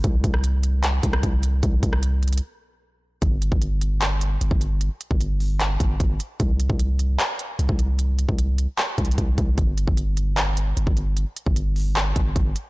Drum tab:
HH |x-----------x-----------x-----------x-----------x-----------x-----------x-----------x-----------|x-----------x-----------x-----------x--x--x--x--------------------------------------------------|x-----------x-----------x-----------x-----------x-----------x-----------x-----------x-----------|x-----------x-----------x-----------o-----------x-----------x-----------x-----------x-----------|
CP |------------------------------------------------x-----------------------------------------------|------------------------------------------------------------------------------------------------|------------------------------------------------x-----------------------------------------------|------------------------------------------------x-----------------------------------------------|
SD |------------------r-----------------------------------------------r-----------------------------|------------------r-----------------------------------------------------------------------------|------------------------------------------------------------------------------------------------|------------------------------------------------------------------------------------------------|
BD |o-----------o-----------------------------------------------o-----------o-----------------------|o-----------o-----------------------------------------------------------------------------------|o-----------------o-----------------------------------------------------------o-----------------|------------------o-----------------------------------------o-----------o-----------------------|

HH |x-----------x-----------x-----------x-----------x-----------x-----------x-----------x-----------|x-----------x-----------x-----------x-----------x-----------x---x---x---x-----------x-----------|x-----------x-----------x-----------x-----------x-----------x-----------x-----------x-----------|x-----------x-----------x-----------o-----------x-----------x-----------x-----------x-----------|
CP |------------------------------------------------x-----------------------------------------------|------------------------------------------------x-----------------------------------------------|------------------------------------------------x-----------------------------------------------|------------------------------------------------x-----------------------------------------------|
SD |------------------------------------------------------------------------------------------------|------------------------------------------------------------------------------------------------|------------------------------------------------------------------------------------------------|------------------------------------------------------------------------------------------------|
BD |o-----------------o-----------------------------------------------------------o-----------------|------------------o-----------------------------------------o-----------o-----------o-----------|o-----------------o-----------------------------------------------------------o-----------------|------------------o-----------------------------------------o-----------o-----------------------|